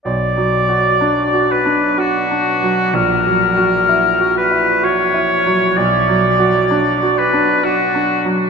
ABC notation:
X:1
M:3/4
L:1/8
Q:1/4=64
K:Bm
V:1 name="Oboe"
d3 B F2 | ^A3 B c2 | d3 B F z |]
V:2 name="Grand piano"
(3B,,, F, F (3D F D (3F D F, | (3^A,,, F, F (3E F E (3F E F, | (3B,,, F, F (3D F D (3F D F, |]